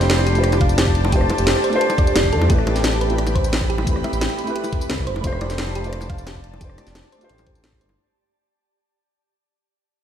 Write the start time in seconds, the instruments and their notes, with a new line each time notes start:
Already playing: analog synth bass F1, felt piano A3 D4 F4 G4 C5, ambient pad G4 D5 A5
0.01 snare, closed hi-hat, tambourine
0.10 snare, closed hi-hat, tambourine
0.19 high bongo
0.27 synth arpeggio sound G4, closed hi-hat, tambourine
0.33 felt piano A3 D4 F4, closed hi-hat, tambourine
0.37 felt piano G4 C5
0.44 cross-stick, closed hi-hat
0.52 closed hi-hat, tambourine, high bongo
0.61 synth arpeggio sound F5, kick, closed hi-hat
0.69 tambourine
0.78 synth arpeggio sound G4, snare, closed hi-hat, tambourine, high bongo
0.87 kick
0.95 closed hi-hat
1.05 high bongo
1.09 felt piano A3 D4 F4, synth arpeggio sound G4, kick, closed hi-hat, tambourine
1.14 felt piano G4 C5
1.21 cross-stick
1.30 closed hi-hat, high bongo
1.38 analog synth bass F1, closed hi-hat, tambourine
1.47 snare, closed hi-hat, tambourine
1.56 high bongo
1.64 synth arpeggio sound C5, closed hi-hat, tambourine
1.70 felt piano A3 D4 F4, closed hi-hat, tambourine
1.74 felt piano G4 C5
1.81 synth arpeggio sound C5, closed hi-hat
1.90 closed hi-hat, tambourine, high bongo
1.98 synth arpeggio sound D5, kick, closed hi-hat
2.07 tambourine
2.15 analog synth bass F1, synth arpeggio sound D5, snare, closed hi-hat, tambourine, high bongo
2.24 kick
2.33 analog synth bass F2, synth arpeggio sound A4, closed hi-hat
2.42 high bongo
2.46 analog synth bass A1, felt piano A3 C4 E4, ambient pad C4 B5, synth arpeggio sound G4, kick, closed hi-hat, tambourine
2.51 felt piano G4 B4
2.58 cross-stick
2.67 closed hi-hat, high bongo
2.76 snare, closed hi-hat, tambourine
2.84 snare, closed hi-hat, tambourine
2.93 high bongo
3.01 synth arpeggio sound B4, closed hi-hat, tambourine
3.07 felt piano A3 C4 E4, closed hi-hat, tambourine
3.11 felt piano G4 B4
3.18 synth arpeggio sound B4, cross-stick, closed hi-hat
3.27 closed hi-hat, tambourine, high bongo
3.35 synth arpeggio sound C5, kick, closed hi-hat
3.44 tambourine
3.53 snare, closed hi-hat, tambourine, high bongo
3.61 kick
3.70 synth arpeggio sound G4, closed hi-hat
3.78 high bongo
3.84 felt piano A3 C4 E4, kick, closed hi-hat, tambourine
3.88 felt piano G4 B4
3.96 cross-stick
4.04 synth arpeggio sound E5, closed hi-hat, high bongo
4.13 analog synth bass A1, closed hi-hat, tambourine
4.21 synth arpeggio sound G4, snare, closed hi-hat, tambourine
4.30 high bongo
4.38 closed hi-hat, tambourine
4.44 felt piano A3 C4 E4, closed hi-hat, tambourine
4.48 felt piano G4 B4
4.56 synth arpeggio sound G4, closed hi-hat
4.64 closed hi-hat, tambourine, high bongo
4.73 kick, closed hi-hat
4.81 tambourine
4.90 analog synth bass C2, snare, closed hi-hat, tambourine, high bongo
4.98 kick
5.06 analog synth bass F1, synth arpeggio sound C5, ambient pad D5 A5, closed hi-hat
5.16 high bongo
5.21 analog synth bass F1, felt piano A3 D4 F4, synth arpeggio sound C5, kick, closed hi-hat, tambourine
5.25 felt piano G4 C5
5.32 cross-stick
5.41 synth arpeggio sound D5, closed hi-hat, high bongo
5.50 snare, closed hi-hat, tambourine
5.58 snare, closed hi-hat, tambourine
5.67 high bongo
5.75 synth arpeggio sound G4, closed hi-hat, tambourine
5.81 felt piano A3 D4 F4, closed hi-hat, tambourine
5.85 felt piano G4 C5
5.93 cross-stick, closed hi-hat
6.01 closed hi-hat, tambourine, high bongo
6.10 synth arpeggio sound F5, kick, closed hi-hat
6.18 tambourine
6.27 synth arpeggio sound G4, snare, closed hi-hat, tambourine, high bongo
6.35 kick
6.44 closed hi-hat
6.53 high bongo
6.58 felt piano A3 D4 F4, synth arpeggio sound G4, kick, closed hi-hat, tambourine
6.62 felt piano G4 C5
6.70 cross-stick
6.78 cross-stick, closed hi-hat, tambourine, high bongo
6.87 analog synth bass F1, snare, closed hi-hat, tambourine
6.95 snare, closed hi-hat, tambourine
7.04 high bongo
7.12 synth arpeggio sound C5, closed hi-hat, tambourine
7.18 felt piano A3 D4 F4, closed hi-hat, tambourine
7.23 felt piano G4 C5
7.29 analog synth bass A1, synth arpeggio sound C5, closed hi-hat
7.38 closed hi-hat, tambourine, high bongo
7.47 synth arpeggio sound C5, kick, closed hi-hat
7.55 tambourine
7.64 snare, closed hi-hat, tambourine, high bongo
7.73 kick
7.81 analog synth bass G1, synth arpeggio sound C5, closed hi-hat, tambourine
7.89 high bongo